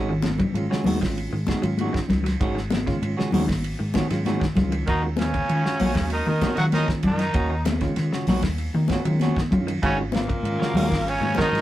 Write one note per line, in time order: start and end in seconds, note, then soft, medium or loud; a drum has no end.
0.00 0.44 G#1 loud
0.00 0.12 D#3 medium
0.00 0.12 G#3 medium
0.00 0.12 C#4 medium
0.00 0.12 F#4 medium
0.09 0.34 D#3 medium
0.09 0.34 G#3 medium
0.09 0.34 C#4 medium
0.09 0.35 F4 medium
0.22 muted clean electric guitar stroke soft
0.22 snare medium
0.22 ride bell medium
0.22 high conga loud
0.38 0.65 C#3 medium
0.38 muted clean electric guitar stroke soft
0.38 kick medium
0.38 ride bell soft
0.38 low conga medium
0.54 0.67 G#2 loud
0.54 0.80 D#3 loud
0.54 0.80 G#3 medium
0.54 0.81 C#4 medium
0.54 0.81 F4 loud
0.54 muted clean electric guitar stroke medium
0.54 ride bell medium
0.54 high conga soft
0.70 0.95 C#3 medium
0.70 0.85 G#3 medium
0.70 0.86 C#4 medium
0.70 0.85 F#4 medium
0.70 snare medium
0.84 0.98 D#2 medium
0.84 1.01 D#3 loud
0.84 1.01 G#3 loud
0.84 1.00 F#4 loud
0.84 open hi-hat medium
0.84 high conga medium
0.84 low conga medium
1.01 1.27 G#1 medium
1.01 1.26 D#3 medium
1.01 1.36 D#3 medium
1.01 1.36 G#3 medium
1.01 1.36 C#4 medium
1.01 1.36 F4 medium
1.01 muted clean electric guitar stroke soft
1.01 kick medium
1.01 snare medium
1.01 ride bell medium
1.15 ride bell soft
1.15 high conga soft
1.32 1.45 G#2 loud
1.32 1.57 D#3 medium
1.32 muted clean electric guitar stroke medium
1.47 1.63 D#3 medium
1.47 1.63 G#3 medium
1.47 1.63 F#4 medium
1.47 muted clean electric guitar stroke medium
1.47 kick medium
1.47 snare medium
1.47 ride bell medium
1.47 high conga medium
1.62 1.88 G#2 medium
1.62 2.32 D#3 loud
1.62 1.87 F#3 medium
1.62 2.32 G#3 medium
1.62 2.32 C#4 medium
1.62 2.32 F4 loud
1.62 muted clean electric guitar stroke medium
1.62 ride bell medium
1.78 1.98 D#3 medium
1.78 1.98 G#3 medium
1.78 1.98 F#4 medium
1.78 ride bell medium
1.78 high conga medium
1.93 2.18 D#3 medium
1.93 kick medium
1.93 snare medium
2.09 2.35 C#2 medium
2.09 muted clean electric guitar stroke soft
2.09 kick medium
2.09 snare soft
2.09 ride bell medium
2.09 low conga medium
2.24 2.37 F#3 medium
2.24 muted clean electric guitar stroke medium
2.24 snare soft
2.24 ride bell medium
2.39 2.91 G#1 loud
2.39 2.59 D#3 medium
2.39 2.59 G#3 medium
2.39 2.59 C#4 medium
2.39 2.59 F#4 loud
2.39 kick loud
2.39 ride bell medium
2.39 high conga soft
2.55 2.80 D#3 medium
2.55 snare soft
2.70 muted clean electric guitar stroke soft
2.70 snare medium
2.70 ride bell medium
2.70 high conga loud
2.87 3.11 C#3 medium
2.87 3.47 D#3 medium
2.87 3.47 G#3 medium
2.87 3.47 C#4 medium
2.87 3.47 F4 loud
2.87 muted clean electric guitar stroke medium
2.87 kick medium
2.87 snare soft
2.87 ride bell medium
3.02 3.15 G#2 loud
3.02 muted clean electric guitar stroke soft
3.02 ride bell medium
3.02 high conga soft
3.17 3.43 C#3 medium
3.17 3.32 G#3 medium
3.17 3.32 C#4 medium
3.17 3.33 F#4 medium
3.17 snare medium
3.32 3.46 D#2 medium
3.32 3.49 D#3 medium
3.32 3.48 G#3 medium
3.32 3.48 C#4 medium
3.32 3.47 F#4 loud
3.32 open hi-hat medium
3.32 high conga medium
3.32 low conga medium
3.48 3.74 G#1 medium
3.48 3.73 D#3 medium
3.48 muted clean electric guitar stroke medium
3.48 kick medium
3.48 snare medium
3.48 ride bell medium
3.63 ride bell medium
3.63 high conga soft
3.79 3.92 G#2 medium
3.79 4.04 D#3 medium
3.79 muted clean electric guitar stroke medium
3.94 4.03 D#3 loud
3.94 4.10 D#3 medium
3.94 4.04 G#3 medium
3.94 4.03 C#4 medium
3.94 4.09 C#4 medium
3.94 4.04 F4 loud
3.94 4.09 F#4 medium
3.94 muted clean electric guitar stroke medium
3.94 muted fingered electric bass stroke soft
3.94 kick medium
3.94 snare medium
3.94 ride bell medium
3.94 high conga medium
4.10 4.36 G#2 medium
4.10 4.36 D#3 medium
4.10 4.35 F#3 medium
4.10 4.36 G#3 medium
4.10 4.36 C#4 medium
4.10 4.36 F4 loud
4.10 muted clean electric guitar stroke medium
4.10 snare soft
4.10 ride bell medium
4.25 4.44 D#3 medium
4.25 4.44 G#3 medium
4.25 4.45 C#4 medium
4.25 4.45 F#4 medium
4.25 snare soft
4.25 ride bell medium
4.25 high conga medium
4.40 4.65 D#3 medium
4.40 kick medium
4.40 snare medium
4.55 4.82 C#2 medium
4.55 4.83 D#3 medium
4.55 4.83 G#3 medium
4.55 4.83 C#4 medium
4.55 4.83 F4 loud
4.55 muted clean electric guitar stroke soft
4.55 kick medium
4.55 snare soft
4.55 ride bell medium
4.55 low conga medium
4.72 4.85 D#3 medium
4.72 muted clean electric guitar stroke medium
4.72 ride bell medium
4.86 5.39 D#2 loud
4.86 5.00 D#3 medium
4.86 5.06 A#3 medium
4.86 5.02 D#4 medium
4.86 5.07 F#4 medium
4.86 5.03 D#5 medium
4.86 muted clean electric guitar stroke medium
4.86 kick loud
4.86 ride bell medium
5.02 5.28 D#3 medium
5.02 5.29 D#3 medium
5.02 5.29 G#3 medium
5.02 5.29 C#4 medium
5.02 5.29 F4 medium
5.17 6.07 C#3 medium
5.17 6.08 C#4 medium
5.17 muted clean electric guitar stroke soft
5.17 snare medium
5.17 ride bell soft
5.17 high conga loud
5.21 6.08 C#5 medium
5.34 5.59 C#3 medium
5.34 muted clean electric guitar stroke soft
5.34 kick medium
5.34 ride bell soft
5.47 5.74 D#3 medium
5.47 5.62 D#3 medium
5.47 5.74 G#3 medium
5.47 5.75 C#4 medium
5.47 5.75 F4 medium
5.47 muted clean electric guitar stroke soft
5.47 ride bell medium
5.47 high conga soft
5.65 5.79 C#4 soft
5.65 5.79 F#4 medium
5.65 snare medium
5.80 5.93 A#1 medium
5.80 5.96 A#3 medium
5.80 5.94 C#4 medium
5.80 5.94 F#4 medium
5.80 open hi-hat medium
5.80 high conga medium
5.80 low conga medium
5.95 6.21 D#2 medium
5.95 6.30 D#3 medium
5.95 6.20 F#3 medium
5.95 6.30 G#3 medium
5.95 6.30 C#4 medium
5.95 6.30 F#4 medium
5.95 kick medium
5.95 snare medium
5.95 ride bell medium
6.10 6.26 D#3 medium
6.10 6.27 D#4 medium
6.10 6.27 D#5 medium
6.10 ride bell soft
6.10 high conga soft
6.26 6.39 D#3 loud
6.26 6.55 D#3 medium
6.26 6.52 D#3 medium
6.26 6.57 D#4 medium
6.26 6.56 D#5 medium
6.26 muted clean electric guitar stroke medium
6.26 high conga medium
6.41 6.58 A#3 medium
6.41 6.57 C#4 medium
6.41 6.56 F#4 medium
6.41 muted fingered electric bass stroke soft
6.41 kick medium
6.41 snare medium
6.41 ride bell medium
6.41 high conga loud
6.57 7.26 D#3 medium
6.57 6.83 D#3 loud
6.57 6.82 F#3 medium
6.57 6.65 F#3 medium
6.57 7.27 G#3 medium
6.57 7.27 C#4 medium
6.57 7.27 F4 medium
6.57 6.65 F#4 loud
6.57 6.66 F#5 medium
6.57 muted clean electric guitar stroke medium
6.57 snare soft
6.57 ride bell medium
6.72 6.87 D#3 medium
6.72 6.91 A#3 medium
6.72 6.92 C#4 medium
6.72 6.88 D#4 medium
6.72 6.87 D#5 medium
6.72 muted clean electric guitar stroke medium
6.72 snare soft
6.72 ride bell medium
6.72 high conga medium
6.88 7.13 D#3 medium
6.88 kick medium
6.88 snare medium
7.03 7.29 F#2 medium
7.03 7.63 D#3 medium
7.03 7.62 D#5 medium
7.03 muted clean electric guitar stroke soft
7.03 kick medium
7.03 ride bell medium
7.03 low conga medium
7.07 7.64 D#4 loud
7.19 7.32 D#3 medium
7.19 muted clean electric guitar stroke soft
7.19 snare soft
7.19 ride bell medium
7.34 7.85 D#2 loud
7.34 7.53 A#3 medium
7.34 7.53 C#4 medium
7.34 7.54 F#4 medium
7.34 kick loud
7.34 ride bell medium
7.34 high conga soft
7.50 7.75 D#3 medium
7.65 muted clean electric guitar stroke soft
7.65 snare medium
7.65 ride bell medium
7.65 high conga loud
7.81 8.06 C#3 medium
7.81 8.42 D#3 loud
7.81 8.42 G#3 medium
7.81 8.42 C#4 loud
7.81 8.42 F4 loud
7.81 muted clean electric guitar stroke medium
7.81 kick medium
7.81 snare soft
7.81 ride bell soft
7.96 8.10 D#3 loud
7.96 muted clean electric guitar stroke soft
7.96 snare soft
7.96 ride bell medium
7.96 high conga soft
8.12 8.37 C#3 medium
8.12 8.27 C#4 medium
8.12 8.28 F#4 medium
8.12 snare medium
8.27 8.40 A#1 medium
8.27 8.43 A#3 medium
8.27 8.44 C#4 loud
8.27 8.43 F#4 loud
8.27 snare soft
8.27 open hi-hat medium
8.27 high conga medium
8.27 low conga medium
8.42 8.68 D#2 medium
8.42 8.68 D#3 medium
8.42 muted clean electric guitar stroke medium
8.42 kick medium
8.42 snare medium
8.42 ride bell medium
8.58 ride bell soft
8.58 high conga soft
8.74 8.87 D#3 loud
8.74 8.99 D#3 medium
8.74 muted clean electric guitar stroke soft
8.74 high conga medium
8.88 8.98 D#3 medium
8.88 8.98 G#3 medium
8.88 9.06 A#3 medium
8.88 8.98 C#4 medium
8.88 9.05 C#4 medium
8.88 8.98 F4 loud
8.88 9.05 F#4 medium
8.88 kick medium
8.88 snare medium
8.88 ride bell medium
8.88 high conga medium
9.05 9.31 D#3 loud
9.05 9.31 D#3 medium
9.05 9.30 F#3 medium
9.05 9.31 G#3 medium
9.05 9.31 C#4 medium
9.05 9.31 F4 medium
9.05 muted clean electric guitar stroke medium
9.05 ride bell medium
9.20 9.40 A#3 medium
9.20 9.40 C#4 medium
9.20 9.40 F#4 medium
9.20 snare soft
9.20 ride bell medium
9.20 high conga medium
9.36 9.62 D#3 medium
9.36 kick medium
9.36 snare medium
9.51 9.77 F#2 loud
9.51 9.78 D#3 medium
9.51 9.78 G#3 medium
9.51 9.78 C#4 medium
9.51 9.78 F4 loud
9.51 muted clean electric guitar stroke soft
9.51 kick medium
9.51 ride bell medium
9.51 low conga medium
9.67 9.79 D#3 medium
9.67 muted clean electric guitar stroke soft
9.67 ride bell medium
9.82 10.33 G#1 loud
9.82 9.96 C#3 loud
9.82 10.01 D#3 medium
9.82 10.01 G#3 medium
9.82 10.01 C#4 medium
9.82 9.99 C#4 medium
9.82 10.02 F#4 loud
9.82 9.97 C#5 medium
9.82 kick loud
9.82 ride bell medium
9.82 high conga soft
9.98 10.23 D#3 medium
9.98 10.24 D#3 medium
9.98 10.24 G#3 medium
9.98 10.24 C#4 medium
9.98 10.24 F4 medium
10.12 11.07 A#2 medium
10.12 11.09 A#4 medium
10.12 muted clean electric guitar stroke soft
10.12 snare medium
10.12 ride bell medium
10.12 high conga loud
10.16 11.11 A#3 loud
10.28 10.53 C#3 medium
10.28 muted clean electric guitar stroke soft
10.28 kick medium
10.28 ride bell soft
10.43 10.56 G#2 loud
10.43 10.70 D#3 medium
10.43 10.70 G#3 medium
10.43 10.70 C#4 medium
10.43 10.70 F4 medium
10.43 muted clean electric guitar stroke soft
10.43 ride bell medium
10.43 high conga soft
10.60 10.85 C#3 medium
10.60 10.74 G#3 medium
10.60 10.75 C#4 medium
10.60 10.75 F#4 medium
10.60 snare medium
10.74 10.87 D#2 medium
10.74 10.91 D#3 medium
10.74 10.91 G#3 loud
10.74 10.90 C#4 medium
10.74 10.90 F#4 loud
10.74 open hi-hat medium
10.74 high conga medium
10.74 low conga medium
10.90 11.16 G#1 medium
10.90 11.25 D#3 medium
10.90 11.16 D#3 medium
10.90 11.25 G#3 medium
10.90 11.25 C#4 medium
10.90 11.25 F4 medium
10.90 muted clean electric guitar stroke soft
10.90 kick medium
10.90 snare medium
10.90 ride bell medium
11.06 11.37 C#3 medium
11.06 11.39 C#4 loud
11.06 11.38 C#5 medium
11.06 ride bell soft
11.06 high conga soft
11.20 11.34 G#2 loud
11.20 11.47 D#3 medium
11.20 muted clean electric guitar stroke medium
11.20 high conga medium
11.35 11.53 D#3 medium
11.35 11.61 D#3 loud
11.35 11.52 G#3 medium
11.35 11.52 C#4 medium
11.35 11.51 F#4 medium
11.35 muted fingered electric bass stroke soft
11.35 kick medium
11.35 ride bell medium
11.35 high conga medium
11.40 11.61 D#4 loud
11.40 11.61 D#5 medium
11.40 snare medium
11.52 11.61 G#2 loud
11.52 11.61 D#3 medium
11.52 11.61 F#3 medium
11.52 11.61 G#3 medium
11.52 11.61 C#4 medium
11.52 11.61 F4 medium
11.52 muted clean electric guitar stroke soft
11.52 ride bell medium
11.56 snare soft